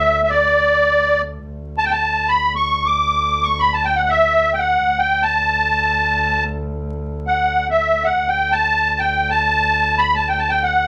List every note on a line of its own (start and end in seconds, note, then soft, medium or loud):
0.00 1.47 D2 medium
0.00 0.22 E5 medium
0.23 0.30 E5 medium
0.30 1.22 D5 medium
1.48 4.84 D2 medium
1.78 1.85 A5 medium
1.85 1.92 G5 medium
1.91 2.30 A5 medium
2.29 2.54 B5 medium
2.56 2.88 C#6 medium
2.86 3.47 D6 medium
3.43 3.61 C#6 medium
3.60 3.74 B5 medium
3.74 3.86 A5 medium
3.84 3.97 G5 medium
3.96 4.10 F#5 medium
4.09 4.53 E5 medium
4.54 4.60 G5 soft
4.59 5.00 F#5 medium
4.85 8.21 D2 medium
4.99 5.23 G5 medium
5.22 6.44 A5 medium
7.27 7.68 F#5 medium
7.71 8.06 E5 medium
8.04 8.29 F#5 medium
8.21 10.87 D2 medium
8.28 8.54 G5 medium
8.52 9.01 A5 medium
8.99 9.30 G5 medium
9.30 10.01 A5 medium
9.98 10.15 B5 medium
10.15 10.28 A5 medium
10.28 10.40 G5 medium
10.39 10.51 A5 medium
10.49 10.64 G5 medium
10.63 10.87 F#5 medium